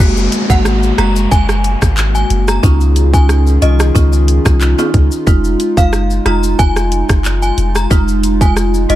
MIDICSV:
0, 0, Header, 1, 7, 480
1, 0, Start_track
1, 0, Time_signature, 4, 2, 24, 8
1, 0, Tempo, 659341
1, 6519, End_track
2, 0, Start_track
2, 0, Title_t, "Synth bell"
2, 0, Program_c, 0, 98
2, 365, Note_on_c, 0, 78, 85
2, 454, Note_off_c, 0, 78, 0
2, 718, Note_on_c, 0, 82, 78
2, 818, Note_off_c, 0, 82, 0
2, 957, Note_on_c, 0, 80, 105
2, 1302, Note_off_c, 0, 80, 0
2, 1564, Note_on_c, 0, 80, 79
2, 1654, Note_off_c, 0, 80, 0
2, 1805, Note_on_c, 0, 82, 69
2, 1894, Note_off_c, 0, 82, 0
2, 2284, Note_on_c, 0, 80, 77
2, 2374, Note_off_c, 0, 80, 0
2, 2637, Note_on_c, 0, 75, 79
2, 2738, Note_off_c, 0, 75, 0
2, 4205, Note_on_c, 0, 77, 86
2, 4294, Note_off_c, 0, 77, 0
2, 4558, Note_on_c, 0, 82, 81
2, 4658, Note_off_c, 0, 82, 0
2, 4797, Note_on_c, 0, 80, 102
2, 5142, Note_off_c, 0, 80, 0
2, 5405, Note_on_c, 0, 80, 77
2, 5494, Note_off_c, 0, 80, 0
2, 5644, Note_on_c, 0, 82, 66
2, 5734, Note_off_c, 0, 82, 0
2, 6125, Note_on_c, 0, 80, 78
2, 6214, Note_off_c, 0, 80, 0
2, 6478, Note_on_c, 0, 75, 79
2, 6519, Note_off_c, 0, 75, 0
2, 6519, End_track
3, 0, Start_track
3, 0, Title_t, "Marimba"
3, 0, Program_c, 1, 12
3, 0, Note_on_c, 1, 56, 92
3, 0, Note_on_c, 1, 58, 88
3, 0, Note_on_c, 1, 66, 107
3, 141, Note_off_c, 1, 56, 0
3, 142, Note_off_c, 1, 58, 0
3, 143, Note_off_c, 1, 66, 0
3, 362, Note_on_c, 1, 56, 78
3, 364, Note_on_c, 1, 58, 72
3, 367, Note_on_c, 1, 66, 85
3, 689, Note_off_c, 1, 56, 0
3, 690, Note_off_c, 1, 58, 0
3, 691, Note_off_c, 1, 66, 0
3, 715, Note_on_c, 1, 56, 76
3, 717, Note_on_c, 1, 58, 72
3, 719, Note_on_c, 1, 66, 82
3, 938, Note_off_c, 1, 56, 0
3, 939, Note_off_c, 1, 58, 0
3, 940, Note_off_c, 1, 66, 0
3, 1915, Note_on_c, 1, 61, 98
3, 1918, Note_on_c, 1, 63, 86
3, 1919, Note_on_c, 1, 65, 101
3, 2253, Note_off_c, 1, 61, 0
3, 2254, Note_off_c, 1, 63, 0
3, 2255, Note_off_c, 1, 65, 0
3, 2282, Note_on_c, 1, 61, 79
3, 2284, Note_on_c, 1, 63, 71
3, 2286, Note_on_c, 1, 65, 85
3, 2416, Note_off_c, 1, 61, 0
3, 2417, Note_off_c, 1, 63, 0
3, 2418, Note_off_c, 1, 65, 0
3, 2635, Note_on_c, 1, 61, 75
3, 2637, Note_on_c, 1, 63, 70
3, 2639, Note_on_c, 1, 65, 85
3, 2781, Note_off_c, 1, 61, 0
3, 2782, Note_off_c, 1, 63, 0
3, 2783, Note_off_c, 1, 65, 0
3, 2874, Note_on_c, 1, 61, 97
3, 2877, Note_on_c, 1, 63, 86
3, 2879, Note_on_c, 1, 65, 102
3, 3212, Note_off_c, 1, 61, 0
3, 3214, Note_off_c, 1, 63, 0
3, 3215, Note_off_c, 1, 65, 0
3, 3243, Note_on_c, 1, 61, 77
3, 3245, Note_on_c, 1, 63, 68
3, 3247, Note_on_c, 1, 65, 83
3, 3376, Note_off_c, 1, 61, 0
3, 3377, Note_off_c, 1, 63, 0
3, 3378, Note_off_c, 1, 65, 0
3, 3482, Note_on_c, 1, 61, 78
3, 3484, Note_on_c, 1, 63, 68
3, 3487, Note_on_c, 1, 65, 83
3, 3616, Note_off_c, 1, 61, 0
3, 3617, Note_off_c, 1, 63, 0
3, 3618, Note_off_c, 1, 65, 0
3, 3835, Note_on_c, 1, 56, 94
3, 3837, Note_on_c, 1, 63, 88
3, 3839, Note_on_c, 1, 65, 104
3, 3981, Note_off_c, 1, 56, 0
3, 3982, Note_off_c, 1, 63, 0
3, 3983, Note_off_c, 1, 65, 0
3, 4201, Note_on_c, 1, 56, 76
3, 4204, Note_on_c, 1, 63, 68
3, 4206, Note_on_c, 1, 65, 85
3, 4529, Note_off_c, 1, 56, 0
3, 4530, Note_off_c, 1, 63, 0
3, 4531, Note_off_c, 1, 65, 0
3, 4554, Note_on_c, 1, 56, 78
3, 4557, Note_on_c, 1, 63, 71
3, 4559, Note_on_c, 1, 65, 89
3, 4778, Note_off_c, 1, 56, 0
3, 4779, Note_off_c, 1, 63, 0
3, 4780, Note_off_c, 1, 65, 0
3, 5755, Note_on_c, 1, 56, 97
3, 5757, Note_on_c, 1, 63, 85
3, 5759, Note_on_c, 1, 65, 108
3, 6093, Note_off_c, 1, 56, 0
3, 6094, Note_off_c, 1, 63, 0
3, 6095, Note_off_c, 1, 65, 0
3, 6122, Note_on_c, 1, 56, 77
3, 6124, Note_on_c, 1, 63, 72
3, 6126, Note_on_c, 1, 65, 85
3, 6256, Note_off_c, 1, 56, 0
3, 6257, Note_off_c, 1, 63, 0
3, 6258, Note_off_c, 1, 65, 0
3, 6475, Note_on_c, 1, 56, 76
3, 6477, Note_on_c, 1, 63, 68
3, 6479, Note_on_c, 1, 65, 85
3, 6519, Note_off_c, 1, 56, 0
3, 6519, Note_off_c, 1, 63, 0
3, 6519, Note_off_c, 1, 65, 0
3, 6519, End_track
4, 0, Start_track
4, 0, Title_t, "Analog synth pad"
4, 0, Program_c, 2, 89
4, 0, Note_on_c, 2, 56, 85
4, 0, Note_on_c, 2, 58, 80
4, 0, Note_on_c, 2, 66, 99
4, 1898, Note_off_c, 2, 56, 0
4, 1898, Note_off_c, 2, 58, 0
4, 1898, Note_off_c, 2, 66, 0
4, 1919, Note_on_c, 2, 51, 88
4, 1919, Note_on_c, 2, 61, 81
4, 1919, Note_on_c, 2, 63, 80
4, 1919, Note_on_c, 2, 65, 82
4, 1919, Note_on_c, 2, 68, 97
4, 3819, Note_off_c, 2, 51, 0
4, 3819, Note_off_c, 2, 61, 0
4, 3819, Note_off_c, 2, 68, 0
4, 3837, Note_on_c, 2, 56, 88
4, 6519, Note_off_c, 2, 56, 0
4, 6519, Note_off_c, 2, 63, 0
4, 6519, Note_off_c, 2, 65, 0
4, 6519, End_track
5, 0, Start_track
5, 0, Title_t, "Sub bass"
5, 0, Program_c, 3, 38
5, 0, Note_on_c, 3, 30, 105
5, 207, Note_off_c, 3, 30, 0
5, 362, Note_on_c, 3, 32, 96
5, 671, Note_off_c, 3, 32, 0
5, 717, Note_on_c, 3, 30, 107
5, 927, Note_off_c, 3, 30, 0
5, 959, Note_on_c, 3, 30, 114
5, 1279, Note_off_c, 3, 30, 0
5, 1326, Note_on_c, 3, 32, 89
5, 1633, Note_off_c, 3, 32, 0
5, 1677, Note_on_c, 3, 30, 96
5, 1887, Note_off_c, 3, 30, 0
5, 1918, Note_on_c, 3, 37, 105
5, 2608, Note_off_c, 3, 37, 0
5, 2637, Note_on_c, 3, 36, 93
5, 2847, Note_off_c, 3, 36, 0
5, 2879, Note_on_c, 3, 37, 104
5, 3199, Note_off_c, 3, 37, 0
5, 3246, Note_on_c, 3, 36, 100
5, 3455, Note_off_c, 3, 36, 0
5, 3597, Note_on_c, 3, 37, 93
5, 3708, Note_off_c, 3, 37, 0
5, 3837, Note_on_c, 3, 29, 103
5, 4047, Note_off_c, 3, 29, 0
5, 4202, Note_on_c, 3, 30, 92
5, 4511, Note_off_c, 3, 30, 0
5, 4557, Note_on_c, 3, 29, 100
5, 4767, Note_off_c, 3, 29, 0
5, 4799, Note_on_c, 3, 29, 112
5, 5119, Note_off_c, 3, 29, 0
5, 5166, Note_on_c, 3, 30, 89
5, 5473, Note_off_c, 3, 30, 0
5, 5517, Note_on_c, 3, 29, 96
5, 5727, Note_off_c, 3, 29, 0
5, 5758, Note_on_c, 3, 29, 105
5, 6448, Note_off_c, 3, 29, 0
5, 6477, Note_on_c, 3, 29, 97
5, 6519, Note_off_c, 3, 29, 0
5, 6519, End_track
6, 0, Start_track
6, 0, Title_t, "Downlifter"
6, 0, Program_c, 4, 103
6, 0, Note_on_c, 4, 60, 84
6, 3837, Note_off_c, 4, 60, 0
6, 6519, End_track
7, 0, Start_track
7, 0, Title_t, "Drums"
7, 0, Note_on_c, 9, 36, 120
7, 0, Note_on_c, 9, 49, 96
7, 0, Note_on_c, 9, 82, 70
7, 70, Note_off_c, 9, 36, 0
7, 70, Note_off_c, 9, 49, 0
7, 70, Note_off_c, 9, 82, 0
7, 122, Note_on_c, 9, 82, 60
7, 125, Note_off_c, 9, 82, 0
7, 125, Note_on_c, 9, 82, 46
7, 198, Note_off_c, 9, 82, 0
7, 235, Note_on_c, 9, 42, 78
7, 235, Note_on_c, 9, 82, 57
7, 237, Note_off_c, 9, 82, 0
7, 237, Note_on_c, 9, 82, 48
7, 307, Note_off_c, 9, 42, 0
7, 310, Note_off_c, 9, 82, 0
7, 362, Note_on_c, 9, 36, 92
7, 364, Note_on_c, 9, 82, 81
7, 435, Note_off_c, 9, 36, 0
7, 437, Note_off_c, 9, 82, 0
7, 476, Note_on_c, 9, 37, 87
7, 476, Note_on_c, 9, 82, 70
7, 548, Note_off_c, 9, 37, 0
7, 549, Note_off_c, 9, 82, 0
7, 603, Note_on_c, 9, 82, 52
7, 605, Note_off_c, 9, 82, 0
7, 605, Note_on_c, 9, 82, 45
7, 678, Note_off_c, 9, 82, 0
7, 715, Note_on_c, 9, 37, 87
7, 716, Note_on_c, 9, 42, 80
7, 716, Note_on_c, 9, 82, 54
7, 788, Note_off_c, 9, 37, 0
7, 789, Note_off_c, 9, 42, 0
7, 789, Note_off_c, 9, 82, 0
7, 843, Note_on_c, 9, 82, 78
7, 844, Note_off_c, 9, 82, 0
7, 844, Note_on_c, 9, 82, 84
7, 917, Note_off_c, 9, 82, 0
7, 958, Note_on_c, 9, 82, 79
7, 959, Note_off_c, 9, 82, 0
7, 959, Note_on_c, 9, 36, 96
7, 959, Note_on_c, 9, 82, 90
7, 1032, Note_off_c, 9, 36, 0
7, 1032, Note_off_c, 9, 82, 0
7, 1084, Note_on_c, 9, 82, 59
7, 1085, Note_off_c, 9, 82, 0
7, 1085, Note_on_c, 9, 37, 94
7, 1085, Note_on_c, 9, 82, 53
7, 1157, Note_off_c, 9, 37, 0
7, 1157, Note_off_c, 9, 82, 0
7, 1197, Note_on_c, 9, 42, 73
7, 1197, Note_on_c, 9, 82, 54
7, 1269, Note_off_c, 9, 42, 0
7, 1269, Note_off_c, 9, 82, 0
7, 1323, Note_on_c, 9, 82, 76
7, 1325, Note_on_c, 9, 37, 96
7, 1326, Note_off_c, 9, 82, 0
7, 1326, Note_on_c, 9, 36, 88
7, 1326, Note_on_c, 9, 82, 75
7, 1398, Note_off_c, 9, 37, 0
7, 1399, Note_off_c, 9, 36, 0
7, 1399, Note_off_c, 9, 82, 0
7, 1435, Note_on_c, 9, 82, 82
7, 1437, Note_on_c, 9, 39, 102
7, 1438, Note_off_c, 9, 82, 0
7, 1438, Note_on_c, 9, 82, 70
7, 1510, Note_off_c, 9, 39, 0
7, 1511, Note_off_c, 9, 82, 0
7, 1565, Note_on_c, 9, 82, 55
7, 1638, Note_off_c, 9, 82, 0
7, 1677, Note_on_c, 9, 42, 74
7, 1677, Note_on_c, 9, 82, 50
7, 1750, Note_off_c, 9, 42, 0
7, 1750, Note_off_c, 9, 82, 0
7, 1803, Note_on_c, 9, 82, 75
7, 1807, Note_off_c, 9, 82, 0
7, 1807, Note_on_c, 9, 37, 96
7, 1807, Note_on_c, 9, 82, 75
7, 1879, Note_off_c, 9, 82, 0
7, 1880, Note_off_c, 9, 37, 0
7, 1918, Note_on_c, 9, 36, 117
7, 1918, Note_on_c, 9, 82, 82
7, 1991, Note_off_c, 9, 36, 0
7, 1991, Note_off_c, 9, 82, 0
7, 2043, Note_on_c, 9, 82, 60
7, 2045, Note_off_c, 9, 82, 0
7, 2045, Note_on_c, 9, 82, 47
7, 2118, Note_off_c, 9, 82, 0
7, 2155, Note_on_c, 9, 42, 79
7, 2155, Note_on_c, 9, 82, 57
7, 2157, Note_off_c, 9, 82, 0
7, 2157, Note_on_c, 9, 82, 51
7, 2228, Note_off_c, 9, 42, 0
7, 2230, Note_off_c, 9, 82, 0
7, 2283, Note_on_c, 9, 36, 96
7, 2285, Note_on_c, 9, 82, 82
7, 2355, Note_off_c, 9, 36, 0
7, 2358, Note_off_c, 9, 82, 0
7, 2396, Note_on_c, 9, 37, 91
7, 2397, Note_on_c, 9, 82, 64
7, 2398, Note_off_c, 9, 82, 0
7, 2398, Note_on_c, 9, 82, 72
7, 2469, Note_off_c, 9, 37, 0
7, 2470, Note_off_c, 9, 82, 0
7, 2524, Note_on_c, 9, 82, 51
7, 2525, Note_off_c, 9, 82, 0
7, 2525, Note_on_c, 9, 82, 49
7, 2598, Note_off_c, 9, 82, 0
7, 2637, Note_on_c, 9, 42, 81
7, 2637, Note_on_c, 9, 82, 58
7, 2709, Note_off_c, 9, 42, 0
7, 2709, Note_off_c, 9, 82, 0
7, 2764, Note_on_c, 9, 82, 86
7, 2766, Note_on_c, 9, 37, 102
7, 2837, Note_off_c, 9, 82, 0
7, 2839, Note_off_c, 9, 37, 0
7, 2878, Note_on_c, 9, 82, 80
7, 2879, Note_off_c, 9, 82, 0
7, 2879, Note_on_c, 9, 36, 93
7, 2879, Note_on_c, 9, 82, 89
7, 2952, Note_off_c, 9, 36, 0
7, 2952, Note_off_c, 9, 82, 0
7, 3004, Note_on_c, 9, 82, 58
7, 3005, Note_off_c, 9, 82, 0
7, 3005, Note_on_c, 9, 82, 52
7, 3078, Note_off_c, 9, 82, 0
7, 3117, Note_on_c, 9, 42, 73
7, 3117, Note_on_c, 9, 82, 51
7, 3190, Note_off_c, 9, 42, 0
7, 3190, Note_off_c, 9, 82, 0
7, 3243, Note_on_c, 9, 82, 77
7, 3245, Note_on_c, 9, 37, 101
7, 3246, Note_off_c, 9, 82, 0
7, 3246, Note_on_c, 9, 36, 97
7, 3246, Note_on_c, 9, 82, 76
7, 3317, Note_off_c, 9, 37, 0
7, 3318, Note_off_c, 9, 82, 0
7, 3319, Note_off_c, 9, 36, 0
7, 3354, Note_on_c, 9, 82, 83
7, 3356, Note_on_c, 9, 39, 93
7, 3357, Note_off_c, 9, 82, 0
7, 3357, Note_on_c, 9, 82, 72
7, 3429, Note_off_c, 9, 39, 0
7, 3430, Note_off_c, 9, 82, 0
7, 3485, Note_on_c, 9, 65, 84
7, 3485, Note_on_c, 9, 82, 57
7, 3558, Note_off_c, 9, 65, 0
7, 3558, Note_off_c, 9, 82, 0
7, 3596, Note_on_c, 9, 42, 70
7, 3596, Note_on_c, 9, 82, 51
7, 3597, Note_on_c, 9, 36, 94
7, 3669, Note_off_c, 9, 42, 0
7, 3669, Note_off_c, 9, 82, 0
7, 3670, Note_off_c, 9, 36, 0
7, 3723, Note_on_c, 9, 82, 72
7, 3727, Note_off_c, 9, 82, 0
7, 3727, Note_on_c, 9, 82, 70
7, 3800, Note_off_c, 9, 82, 0
7, 3837, Note_on_c, 9, 82, 69
7, 3838, Note_off_c, 9, 82, 0
7, 3838, Note_on_c, 9, 36, 123
7, 3838, Note_on_c, 9, 82, 82
7, 3910, Note_off_c, 9, 36, 0
7, 3910, Note_off_c, 9, 82, 0
7, 3963, Note_on_c, 9, 82, 61
7, 3965, Note_off_c, 9, 82, 0
7, 3965, Note_on_c, 9, 82, 46
7, 4038, Note_off_c, 9, 82, 0
7, 4075, Note_on_c, 9, 42, 79
7, 4075, Note_on_c, 9, 82, 56
7, 4077, Note_off_c, 9, 82, 0
7, 4077, Note_on_c, 9, 82, 52
7, 4148, Note_off_c, 9, 42, 0
7, 4150, Note_off_c, 9, 82, 0
7, 4202, Note_on_c, 9, 36, 100
7, 4204, Note_on_c, 9, 82, 81
7, 4275, Note_off_c, 9, 36, 0
7, 4277, Note_off_c, 9, 82, 0
7, 4316, Note_on_c, 9, 37, 85
7, 4316, Note_on_c, 9, 82, 65
7, 4317, Note_off_c, 9, 82, 0
7, 4317, Note_on_c, 9, 82, 71
7, 4388, Note_off_c, 9, 37, 0
7, 4389, Note_off_c, 9, 82, 0
7, 4443, Note_on_c, 9, 82, 49
7, 4444, Note_off_c, 9, 82, 0
7, 4444, Note_on_c, 9, 82, 49
7, 4517, Note_off_c, 9, 82, 0
7, 4555, Note_on_c, 9, 37, 94
7, 4556, Note_on_c, 9, 42, 76
7, 4556, Note_on_c, 9, 82, 59
7, 4628, Note_off_c, 9, 37, 0
7, 4629, Note_off_c, 9, 42, 0
7, 4629, Note_off_c, 9, 82, 0
7, 4683, Note_on_c, 9, 82, 81
7, 4684, Note_off_c, 9, 82, 0
7, 4684, Note_on_c, 9, 82, 85
7, 4757, Note_off_c, 9, 82, 0
7, 4797, Note_on_c, 9, 82, 80
7, 4799, Note_off_c, 9, 82, 0
7, 4799, Note_on_c, 9, 36, 95
7, 4799, Note_on_c, 9, 82, 88
7, 4872, Note_off_c, 9, 36, 0
7, 4872, Note_off_c, 9, 82, 0
7, 4924, Note_on_c, 9, 37, 92
7, 4924, Note_on_c, 9, 82, 60
7, 4925, Note_off_c, 9, 82, 0
7, 4925, Note_on_c, 9, 82, 51
7, 4997, Note_off_c, 9, 37, 0
7, 4997, Note_off_c, 9, 82, 0
7, 5036, Note_on_c, 9, 42, 71
7, 5036, Note_on_c, 9, 82, 54
7, 5109, Note_off_c, 9, 42, 0
7, 5109, Note_off_c, 9, 82, 0
7, 5163, Note_on_c, 9, 82, 73
7, 5165, Note_on_c, 9, 37, 97
7, 5166, Note_off_c, 9, 82, 0
7, 5166, Note_on_c, 9, 36, 97
7, 5166, Note_on_c, 9, 82, 76
7, 5237, Note_off_c, 9, 37, 0
7, 5238, Note_off_c, 9, 36, 0
7, 5238, Note_off_c, 9, 82, 0
7, 5274, Note_on_c, 9, 82, 81
7, 5277, Note_off_c, 9, 82, 0
7, 5277, Note_on_c, 9, 39, 95
7, 5277, Note_on_c, 9, 82, 73
7, 5349, Note_off_c, 9, 39, 0
7, 5350, Note_off_c, 9, 82, 0
7, 5405, Note_on_c, 9, 82, 55
7, 5478, Note_off_c, 9, 82, 0
7, 5517, Note_on_c, 9, 42, 71
7, 5517, Note_on_c, 9, 82, 51
7, 5590, Note_off_c, 9, 42, 0
7, 5590, Note_off_c, 9, 82, 0
7, 5643, Note_on_c, 9, 82, 72
7, 5646, Note_off_c, 9, 82, 0
7, 5646, Note_on_c, 9, 82, 71
7, 5647, Note_on_c, 9, 37, 92
7, 5719, Note_off_c, 9, 37, 0
7, 5719, Note_off_c, 9, 82, 0
7, 5757, Note_on_c, 9, 82, 76
7, 5758, Note_on_c, 9, 36, 122
7, 5830, Note_off_c, 9, 36, 0
7, 5830, Note_off_c, 9, 82, 0
7, 5883, Note_on_c, 9, 82, 61
7, 5884, Note_off_c, 9, 82, 0
7, 5884, Note_on_c, 9, 82, 46
7, 5957, Note_off_c, 9, 82, 0
7, 5995, Note_on_c, 9, 42, 83
7, 5995, Note_on_c, 9, 82, 58
7, 5996, Note_off_c, 9, 82, 0
7, 5996, Note_on_c, 9, 82, 52
7, 6068, Note_off_c, 9, 42, 0
7, 6069, Note_off_c, 9, 82, 0
7, 6123, Note_on_c, 9, 36, 98
7, 6125, Note_on_c, 9, 82, 69
7, 6195, Note_off_c, 9, 36, 0
7, 6198, Note_off_c, 9, 82, 0
7, 6236, Note_on_c, 9, 37, 90
7, 6236, Note_on_c, 9, 82, 65
7, 6237, Note_off_c, 9, 82, 0
7, 6237, Note_on_c, 9, 82, 71
7, 6309, Note_off_c, 9, 37, 0
7, 6309, Note_off_c, 9, 82, 0
7, 6364, Note_on_c, 9, 82, 50
7, 6365, Note_off_c, 9, 82, 0
7, 6365, Note_on_c, 9, 82, 46
7, 6437, Note_off_c, 9, 82, 0
7, 6477, Note_on_c, 9, 42, 79
7, 6477, Note_on_c, 9, 82, 53
7, 6519, Note_off_c, 9, 42, 0
7, 6519, Note_off_c, 9, 82, 0
7, 6519, End_track
0, 0, End_of_file